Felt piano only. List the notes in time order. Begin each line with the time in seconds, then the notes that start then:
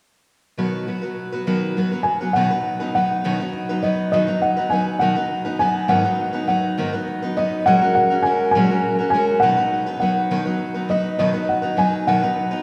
2.03 G#5
2.33 F#5
2.95 F#5
3.83 D#5
4.12 D#5
4.42 F#5
4.70 G#5
4.99 F#5
5.59 G#5
5.89 F#5
6.48 F#5
7.37 D#5
7.66 F#5
7.95 F#5
8.23 G#5
8.51 G#5
9.10 G#5
9.40 F#5
10.00 F#5
10.90 D#5
11.19 D#5
11.49 F#5
11.78 G#5
12.07 F#5